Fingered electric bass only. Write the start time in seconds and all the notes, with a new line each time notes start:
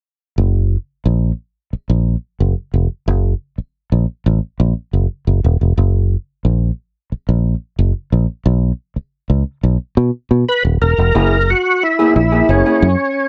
0.38 F#1
1.06 A#1
1.73 muted fingered electric bass stroke
1.90 A#1
2.40 F#1
2.74 F1
3.08 F#1
3.58 muted fingered electric bass stroke
3.92 A#1
4.26 A1
4.60 A#1
4.93 F#1
5.27 F#1
5.44 E1
5.61 F1
5.78 F#1
6.45 A#1
7.12 muted fingered electric bass stroke
7.29 A#1
7.79 F#1
8.12 A#1
8.46 B1
8.96 muted fingered electric bass stroke
9.30 C#2
9.63 B1
9.97 B2
10.31 B2
10.65 D#1
10.82 E1
10.98 F1
11.15 F#1
12.16 A#1
12.49 F#1
12.82 F#2